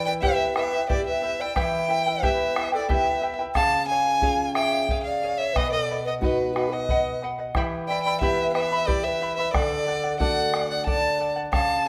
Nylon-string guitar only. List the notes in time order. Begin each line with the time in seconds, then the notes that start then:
Already playing: E3
0.22 B3 E4 G4
0.89 B3 E4 G4
1.56 E3
2.22 B3 E4 G4
2.89 B3 E4 G4
3.55 C#3
4.21 C#4 F4 G#4
5.55 B2
6.21 B3 D#4 F#4
7.54 E3
8.21 B3 E4 G4
9.54 D3
10.20 A3 D4 F#4
11.52 C#3